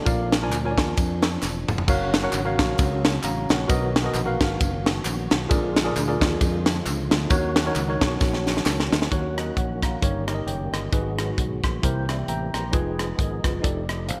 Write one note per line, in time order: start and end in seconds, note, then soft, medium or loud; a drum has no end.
0.00 1.84 F3 medium
0.00 1.86 D4 medium
0.00 0.31 A4 medium
0.05 0.51 A#1 loud
0.05 0.74 A#2 medium
0.05 0.33 F4 medium
0.05 0.33 A#4 medium
0.05 0.34 D5 medium
0.05 0.34 F5 medium
0.05 kick loud
0.05 ride medium
0.05 tambourine medium
0.32 snare loud
0.32 ride medium
0.32 tambourine soft
0.42 0.57 F4 medium
0.42 0.57 A#4 medium
0.42 0.58 D5 medium
0.42 0.58 G#5 medium
0.51 0.74 D2 medium
0.51 clap medium
0.51 ride medium
0.51 tambourine medium
0.64 1.29 F4 medium
0.64 1.29 A#4 medium
0.64 0.72 C#5 medium
0.64 1.30 G#5 medium
0.71 1.32 D5 medium
0.78 0.94 D#2 medium
0.78 kick medium
0.78 snare loud
0.78 ride medium
0.78 tambourine medium
0.97 1.36 F2 medium
0.97 kick loud
0.97 ride medium
0.97 tambourine medium
1.23 snare loud
1.23 clap medium
1.23 ride soft
1.23 tambourine medium
1.42 1.65 E1 medium
1.42 snare medium
1.42 clap medium
1.42 tambourine loud
1.68 1.85 F1 medium
1.68 mid tom medium
1.68 tambourine soft
1.78 floor tom medium
1.88 2.27 F#1 loud
1.88 3.68 C#3 medium
1.88 5.48 F#3 medium
1.88 3.68 C#4 medium
1.88 2.15 F#4 medium
1.88 5.47 F#4 medium
1.88 2.15 A#4 medium
1.88 2.16 C#5 medium
1.88 2.16 F5 medium
1.88 kick loud
1.88 crash medium
1.88 tambourine medium
2.14 snare loud
2.14 ride medium
2.14 tambourine soft
2.23 2.38 F#4 medium
2.23 2.38 A#4 medium
2.23 2.39 C#5 medium
2.23 2.39 F#5 medium
2.33 2.55 G#1 medium
2.33 clap medium
2.33 ride medium
2.33 tambourine medium
2.45 3.10 F#4 medium
2.45 3.10 A#4 medium
2.45 3.11 C#5 medium
2.45 3.11 F5 loud
2.59 2.76 A#1 medium
2.59 kick medium
2.59 snare loud
2.59 ride medium
2.59 tambourine medium
2.78 3.17 C#2 loud
2.78 kick loud
2.78 ride medium
2.78 tambourine medium
3.05 snare loud
3.05 ride soft
3.05 tambourine medium
3.23 3.46 A1 medium
3.23 3.49 F5 medium
3.23 3.49 A#5 medium
3.23 clap medium
3.23 ride medium
3.23 tambourine medium
3.49 3.67 A#1 medium
3.49 3.94 C#5 medium
3.49 3.93 F#5 medium
3.49 snare loud
3.49 ride medium
3.49 tambourine soft
3.67 4.08 B1 loud
3.67 4.36 B2 medium
3.67 5.49 D#3 medium
3.67 5.49 B3 medium
3.67 3.96 F#4 medium
3.67 3.96 A#4 medium
3.67 3.96 B4 medium
3.67 3.96 D#5 medium
3.67 kick loud
3.67 ride medium
3.67 tambourine medium
3.96 snare loud
3.96 ride medium
3.96 tambourine soft
4.04 4.19 F#4 medium
4.04 4.20 A#4 medium
4.04 4.20 B4 medium
4.04 4.20 D#5 medium
4.14 4.36 A#1 loud
4.14 clap medium
4.14 ride medium
4.14 tambourine medium
4.26 4.91 F#4 medium
4.26 4.91 A#4 medium
4.26 4.91 B4 medium
4.26 4.92 F5 loud
4.41 4.57 G#1 medium
4.41 kick medium
4.41 snare loud
4.41 ride medium
4.41 tambourine soft
4.60 4.99 F#1 loud
4.60 kick loud
4.60 ride medium
4.60 tambourine medium
4.86 snare loud
4.86 ride soft
4.86 tambourine medium
5.05 5.27 A#1 medium
5.05 clap medium
5.05 ride medium
5.05 tambourine medium
5.31 5.48 B1 medium
5.31 snare loud
5.31 ride medium
5.31 tambourine soft
5.49 5.89 A#1 loud
5.49 6.17 A#2 medium
5.49 7.29 D3 medium
5.49 7.29 F3 medium
5.49 7.29 G#3 medium
5.49 5.77 F4 medium
5.49 7.29 F4 medium
5.49 5.77 G#4 medium
5.49 5.77 A#4 medium
5.49 5.78 D5 medium
5.49 kick loud
5.49 ride medium
5.49 tambourine medium
5.76 snare loud
5.76 ride medium
5.76 tambourine medium
5.84 6.00 F4 medium
5.84 6.00 G#4 medium
5.84 6.01 A#4 medium
5.84 6.01 D5 medium
5.96 6.18 D2 medium
5.96 clap medium
5.96 ride medium
5.96 tambourine medium
6.07 6.72 F4 medium
6.07 6.72 G#4 medium
6.07 6.72 A#4 medium
6.07 6.73 D5 medium
6.21 6.38 D#2 medium
6.21 kick medium
6.21 snare loud
6.21 ride medium
6.21 tambourine medium
6.41 6.79 F2 loud
6.41 kick loud
6.41 ride medium
6.41 tambourine medium
6.66 snare loud
6.66 ride medium
6.66 tambourine medium
6.86 7.08 C#2 medium
6.86 clap medium
6.86 ride medium
6.86 tambourine medium
7.11 7.28 D2 medium
7.11 snare loud
7.11 ride medium
7.11 tambourine soft
7.29 7.69 D#2 loud
7.29 7.98 D#3 medium
7.29 9.10 C#4 medium
7.29 7.57 D#4 medium
7.29 7.58 F#4 medium
7.29 9.10 F#4 medium
7.29 7.58 A#4 medium
7.29 7.58 C#5 loud
7.29 kick loud
7.29 ride medium
7.29 tambourine medium
7.34 9.10 D#3 medium
7.34 9.10 F#3 medium
7.56 snare loud
7.56 ride medium
7.56 tambourine soft
7.65 7.81 D#4 medium
7.65 7.81 F#4 medium
7.65 7.81 A#4 medium
7.65 7.82 C#5 loud
7.76 7.98 C#2 medium
7.76 clap medium
7.76 ride medium
7.76 tambourine medium
7.88 8.53 D#4 medium
7.88 8.53 F#4 medium
7.88 8.53 A#4 medium
7.88 8.53 C#5 medium
8.01 8.18 B1 medium
8.01 kick medium
8.01 snare loud
8.01 ride medium
8.01 tambourine soft
8.20 8.60 A#1 loud
8.20 kick loud
8.20 snare medium
8.20 tambourine medium
8.34 snare medium
8.47 snare medium
8.47 tambourine medium
8.57 snare medium
8.66 8.88 C#2 medium
8.66 snare medium
8.66 clap medium
8.66 tambourine medium
8.80 snare medium
8.92 9.09 D2 medium
8.92 snare loud
8.92 tambourine soft
9.02 snare medium
9.11 9.50 D#2 medium
9.11 11.80 D#3 medium
9.11 9.79 D#3 medium
9.11 10.01 F#3 medium
9.11 10.91 A#3 medium
9.11 10.91 C#4 medium
9.11 9.77 D#4 medium
9.11 10.01 F#4 medium
9.11 9.78 F#4 medium
9.11 9.38 A#4 medium
9.11 9.38 C#5 medium
9.11 kick medium
9.11 closed hi-hat medium
9.38 9.57 A#4 soft
9.38 9.56 D#5 medium
9.38 cross-stick medium
9.38 closed hi-hat medium
9.57 9.95 A#1 medium
9.57 9.82 C#5 medium
9.57 9.82 F#5 medium
9.57 kick medium
9.57 closed hi-hat medium
9.82 10.27 F5 soft
9.82 10.26 A#5 medium
9.82 kick medium
9.82 cross-stick medium
9.82 closed hi-hat medium
10.02 10.41 G1 medium
10.02 10.69 G2 medium
10.02 10.91 G3 soft
10.02 10.23 D#4 medium
10.02 10.23 G4 medium
10.02 10.92 G4 medium
10.02 10.23 A#4 medium
10.02 10.24 C#5 medium
10.02 kick loud
10.02 closed hi-hat medium
10.27 10.75 D#4 medium
10.27 10.75 G4 medium
10.27 10.48 A#4 medium
10.27 10.33 C#5 medium
10.27 cross-stick medium
10.27 closed hi-hat medium
10.35 10.51 D#5 medium
10.46 10.69 F#1 medium
10.46 10.72 C#5 soft
10.46 10.72 G5 medium
10.46 closed hi-hat medium
10.72 10.89 G1 medium
10.72 11.16 A#4 soft
10.72 11.16 D#5 medium
10.72 cross-stick loud
10.72 closed hi-hat medium
10.92 11.31 G#1 medium
10.92 11.60 G#2 medium
10.92 11.82 F#3 medium
10.92 11.82 G#3 medium
10.92 11.82 B3 medium
10.92 11.58 D#4 medium
10.92 11.59 F#4 medium
10.92 11.82 F#4 medium
10.92 11.59 G#4 medium
10.92 11.59 B4 medium
10.92 kick medium
10.92 closed hi-hat medium
11.19 cross-stick loud
11.19 closed hi-hat medium
11.38 11.60 B1 medium
11.38 kick medium
11.38 closed hi-hat medium
11.64 11.80 A#1 medium
11.64 kick medium
11.64 cross-stick medium
11.64 closed hi-hat medium
11.82 12.22 C2 medium
11.82 12.50 C3 medium
11.82 12.73 E3 medium
11.82 12.73 G3 medium
11.82 12.73 A#3 medium
11.82 12.73 C4 medium
11.82 12.03 E4 medium
11.82 12.04 G4 medium
11.82 12.73 G4 medium
11.82 12.04 A#4 medium
11.82 12.05 C5 medium
11.82 kick medium
11.82 closed hi-hat medium
12.09 12.28 D5 soft
12.09 12.27 E5 medium
12.09 12.27 G5 medium
12.09 cross-stick medium
12.09 closed hi-hat medium
12.28 12.50 A1 medium
12.28 12.53 E5 medium
12.28 12.53 G5 medium
12.28 12.53 A#5 medium
12.28 closed hi-hat medium
12.54 12.71 A#1 medium
12.54 12.98 G5 soft
12.54 12.72 A#5 medium
12.54 12.97 C6 medium
12.54 cross-stick loud
12.54 closed hi-hat medium
12.72 13.12 F1 medium
12.72 14.20 F3 medium
12.72 13.63 G#3 medium
12.72 13.63 B3 medium
12.72 13.39 D#4 medium
12.72 13.63 D#4 medium
12.72 13.18 F4 medium
12.72 13.18 G#4 medium
12.72 13.63 G#4 medium
12.72 13.19 B4 medium
12.72 kick medium
12.72 closed hi-hat medium
12.99 cross-stick medium
12.99 closed hi-hat medium
13.19 13.41 G#1 medium
13.19 13.44 A#4 soft
13.19 13.44 D#5 medium
13.19 kick medium
13.19 closed hi-hat medium
13.44 13.61 F#1 medium
13.44 13.88 F4 soft
13.44 13.87 B4 medium
13.44 kick medium
13.44 cross-stick loud
13.44 closed hi-hat medium
13.62 14.10 F1 medium
13.62 14.20 A3 medium
13.62 14.20 D4 medium
13.62 13.84 D#4 medium
13.62 13.84 G4 medium
13.62 14.20 G4 medium
13.62 13.85 A4 medium
13.62 13.85 D5 medium
13.62 kick medium
13.62 closed hi-hat medium
13.66 14.20 D#4 medium
13.89 14.09 A4 soft
13.89 14.08 D#5 medium
13.89 cross-stick medium
13.89 closed hi-hat medium
14.09 14.20 G#1 medium
14.09 14.20 C5 medium
14.09 14.20 F5 medium
14.09 closed hi-hat medium